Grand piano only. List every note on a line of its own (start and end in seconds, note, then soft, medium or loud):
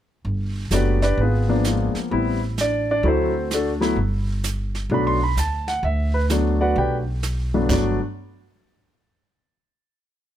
0.71 0.99 F#3 medium
0.71 0.99 A3 soft
0.71 0.99 B3 soft
0.71 0.99 D4 medium
0.71 1.02 G4 medium
0.71 1.02 B4 medium
0.71 1.01 D5 medium
1.03 1.19 D4 medium
1.03 1.19 G4 medium
1.03 1.18 B4 medium
1.03 1.18 D5 medium
1.20 1.48 B3 soft
1.20 1.63 F4 soft
1.20 1.63 G#4 medium
1.20 1.63 B4 medium
1.48 2.08 F3 medium
1.48 2.08 A#3 medium
1.48 2.09 B3 medium
1.48 1.65 D4 medium
1.66 1.95 G#3 soft
1.66 1.95 D4 soft
1.66 1.95 F4 soft
1.66 1.95 G#4 medium
2.11 2.39 G3 medium
2.11 2.39 B3 medium
2.11 2.39 C4 medium
2.11 2.39 E4 medium
2.61 2.89 D4 medium
2.61 2.89 D5 medium
2.91 3.05 D4 medium
2.91 3.05 D5 medium
3.04 3.31 F#3 medium
3.04 3.32 A3 medium
3.04 3.07 C4 medium
3.04 3.32 E4 medium
3.08 3.50 C4 medium
3.08 3.50 F#4 medium
3.08 3.50 A4 medium
3.08 3.50 C5 medium
3.54 3.71 A3 medium
3.54 3.71 D4 medium
3.54 3.71 F#4 medium
3.54 3.71 A4 medium
3.81 3.95 F#3 medium
3.81 3.96 A3 medium
3.81 3.96 B3 medium
3.81 3.96 E4 medium
4.91 5.18 F#3 medium
4.91 5.18 A3 medium
4.91 5.18 B3 medium
4.91 5.18 D4 medium
4.91 5.07 B5 medium
5.07 5.21 C6 medium
5.23 5.37 B5 medium
5.39 5.67 A5 medium
5.68 5.83 F#5 medium
5.84 6.13 E5 medium
6.14 6.24 B4 medium
6.30 7.01 F#3 medium
6.30 7.01 A3 medium
6.30 7.01 B3 medium
6.30 7.01 D4 medium
6.61 6.77 F#4 medium
6.61 6.76 B4 medium
6.61 6.76 D5 medium
6.61 6.76 F#5 medium
6.78 6.96 G4 medium
6.78 6.96 B4 medium
6.78 6.96 D5 medium
6.78 6.96 G5 medium
7.54 7.68 G2 medium
7.54 7.68 F#3 medium
7.54 7.68 A3 medium
7.54 7.68 B3 medium
7.54 7.68 D4 medium
7.70 7.97 F#3 medium
7.70 7.97 A3 medium
7.70 7.98 B3 medium
7.70 7.98 D4 medium
7.70 7.98 D5 medium